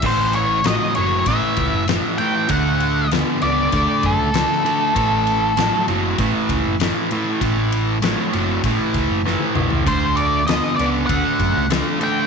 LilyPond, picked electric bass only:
\new Staff \with { instrumentName = "Picked electric bass" } { \clef bass \time 4/4 \key a \major \tempo 4 = 98 a,,4. fis,,8 a,,16 r16 cis,16 fis,,8 r8. | d,4. cis,8 d,16 r16 fis,16 cis,8 r8. | a,,4. fis,,8 a,,16 r16 cis,16 fis,,8 r8. | a,,4. fis,,8 a,,16 r16 cis,16 fis,,8 r16 b,,16 cis,16 |
d,4. cis,8 d,16 r16 fis,16 cis,8 r8. | }